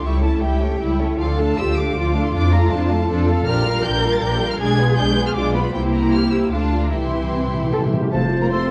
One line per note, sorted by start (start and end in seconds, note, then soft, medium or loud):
0.03 0.37 C#2 medium
0.03 0.21 G3 soft
0.03 0.41 E4 medium
0.03 0.21 E4 soft
0.03 0.21 G4 soft
0.03 0.21 E5 soft
0.03 0.23 C#6 medium
0.21 0.42 A3 soft
0.21 0.42 C#4 soft
0.21 0.41 A4 soft
0.21 0.41 C#5 soft
0.21 0.42 A5 medium
0.41 0.75 C#2 medium
0.41 0.61 G3 soft
0.41 0.61 E4 soft
0.41 0.60 G4 soft
0.41 0.80 G4 medium
0.41 0.61 E5 soft
0.41 0.98 G5 medium
0.60 0.80 A3 soft
0.60 0.80 C#4 soft
0.60 0.80 A4 soft
0.60 0.80 C#5 soft
0.79 1.14 C#2 medium
0.79 0.98 G3 soft
0.79 0.98 E4 soft
0.79 1.19 E4 medium
0.79 0.98 G4 soft
0.79 0.98 E5 soft
1.00 1.19 A3 soft
1.00 1.19 C#4 soft
1.00 1.19 A4 soft
1.00 1.18 C#5 soft
1.18 1.52 D2 medium
1.18 1.37 F3 soft
1.18 1.36 F4 soft
1.18 1.37 F4 soft
1.18 1.57 A4 medium
1.18 1.36 D5 soft
1.18 1.36 F5 medium
1.38 1.57 A3 soft
1.38 1.58 D4 soft
1.38 1.57 A4 soft
1.38 1.57 F5 soft
1.38 1.57 A5 medium
1.57 1.91 D2 medium
1.57 1.77 F3 soft
1.57 1.76 F4 soft
1.57 1.77 F4 soft
1.57 1.96 G4 medium
1.57 1.76 D5 soft
1.57 1.76 E6 medium
1.76 1.96 A3 soft
1.76 1.96 D4 soft
1.76 1.96 A4 soft
1.76 1.96 F5 soft
1.76 2.24 D6 medium
1.95 2.29 D2 medium
1.95 2.14 F3 soft
1.95 2.13 F4 medium
1.95 3.10 F4 medium
1.95 2.14 F4 soft
1.95 2.13 D5 soft
2.14 2.34 A3 soft
2.14 2.33 D4 soft
2.14 2.34 A4 soft
2.14 2.33 F5 soft
2.24 2.34 C6 medium
2.33 2.67 F2 medium
2.33 2.52 F3 medium
2.33 2.52 D4 medium
2.33 2.51 F4 medium
2.33 2.51 D5 medium
2.33 2.52 D6 medium
2.52 2.72 A3 medium
2.52 2.72 F4 soft
2.52 2.71 A4 soft
2.52 2.71 F5 soft
2.52 2.71 A#5 medium
2.70 3.05 F2 medium
2.70 2.91 F3 medium
2.70 2.91 D4 medium
2.70 2.90 F4 soft
2.70 2.90 D5 medium
2.70 3.28 A5 medium
2.90 3.10 A3 soft
2.90 3.10 F4 medium
2.90 3.09 A4 medium
2.90 3.10 F5 soft
3.09 3.43 F2 medium
3.09 3.27 F3 medium
3.09 3.27 D4 medium
3.09 3.27 F4 soft
3.09 3.47 A4 medium
3.09 3.27 D5 soft
3.28 3.48 A3 soft
3.28 3.48 F4 soft
3.28 3.47 A4 medium
3.28 3.47 F5 medium
3.46 3.80 A#1 medium
3.46 3.65 F3 medium
3.46 3.65 D4 medium
3.46 3.65 G4 medium
3.46 4.61 A#4 medium
3.46 3.65 D5 medium
3.46 3.81 F6 medium
3.66 3.85 G3 soft
3.66 3.85 F4 soft
3.66 3.85 A#4 medium
3.66 3.85 F5 medium
3.84 4.18 A#1 medium
3.84 4.04 F3 medium
3.84 4.04 D4 medium
3.84 4.04 G4 medium
3.84 4.04 D5 medium
3.84 4.13 G6 medium
4.03 4.23 G3 medium
4.03 4.23 F4 soft
4.03 4.23 A#4 medium
4.03 4.23 F5 medium
4.14 4.23 A6 medium
4.22 4.56 A#1 medium
4.22 4.41 F3 medium
4.22 4.40 D4 medium
4.22 4.40 G4 medium
4.22 4.40 D5 medium
4.22 4.51 G6 medium
4.41 4.60 G3 medium
4.41 4.60 F4 soft
4.41 4.62 A#4 medium
4.41 4.61 F5 medium
4.50 4.54 F6 medium
4.60 4.93 B1 medium
4.60 4.78 G#3 medium
4.60 4.78 D4 medium
4.60 5.35 G#4 medium
4.60 4.78 G#4 medium
4.60 4.78 D5 medium
4.60 4.97 G#6 loud
4.80 4.99 B3 medium
4.80 4.98 F4 soft
4.80 4.99 B4 soft
4.97 5.32 B1 medium
4.97 5.17 G#3 medium
4.97 5.17 D4 medium
4.97 5.17 G#4 medium
4.97 5.17 D5 medium
4.97 5.25 G6 medium
5.17 5.36 B3 medium
5.17 5.37 F4 medium
5.17 5.36 B4 soft
5.26 5.30 F6 medium
5.34 5.70 B1 medium
5.34 5.54 G#3 medium
5.34 5.54 D4 medium
5.34 5.74 F4 medium
5.34 5.54 G#4 soft
5.34 5.54 D5 medium
5.34 5.54 D6 medium
5.55 5.74 B3 soft
5.55 5.74 F4 soft
5.55 5.74 B4 soft
5.55 5.74 B5 medium
5.73 6.47 C2 medium
5.73 6.47 A#3 medium
5.73 6.47 E4 medium
5.73 6.13 E4 medium
5.73 6.47 G4 medium
5.73 6.47 C5 medium
5.73 5.81 G5 medium
5.93 6.12 A#5 medium
6.11 6.52 G4 medium
6.11 6.31 F6 medium
6.31 6.51 E6 medium
6.51 6.92 D2 medium
6.51 6.91 A3 soft
6.51 6.92 D4 soft
6.51 6.91 F4 soft
6.51 6.91 F4 medium
6.51 6.91 F5 soft
6.51 6.81 A5 medium
6.83 6.92 A#5 medium
6.91 7.93 C2 soft
6.91 6.99 C3 soft
6.91 7.92 E3 soft
6.91 7.92 E4 soft
6.91 7.28 E4 medium
6.91 7.90 G4 soft
6.91 7.90 E5 soft
6.91 7.93 C6 medium
7.00 7.07 C3 soft
7.08 7.15 C3 soft
7.16 7.23 C3 soft
7.24 7.31 C3 soft
7.32 7.39 C3 soft
7.32 7.51 C4 soft
7.40 7.46 C3 soft
7.48 7.53 C3 soft
7.53 7.62 C3 soft
7.53 7.61 E4 soft
7.63 7.69 C3 medium
7.71 7.77 C3 medium
7.71 7.81 A4 medium
7.78 7.85 C3 medium
7.86 7.93 C3 medium
7.93 8.00 C3 medium
7.93 8.12 G4 soft
8.01 8.08 C3 medium
8.11 8.45 F1 medium
8.11 8.30 C3 soft
8.11 8.53 F3 soft
8.11 8.26 F3 medium
8.11 8.20 A3 medium
8.11 8.26 F4 soft
8.11 8.71 F4 soft
8.11 8.20 A4 medium
8.11 8.49 C5 soft
8.11 8.39 A5 medium
8.11 8.18 A5 medium
8.11 8.71 A5 soft
8.31 8.51 F3 soft
8.41 8.45 A#3 medium
8.41 8.50 A#4 medium
8.41 8.45 A#5 medium
8.41 8.46 A#5 medium
8.49 8.71 C3 medium
8.49 8.70 A3 soft
8.49 8.71 C4 medium
8.49 8.71 A4 soft
8.49 8.71 C5 medium
8.49 8.71 C6 medium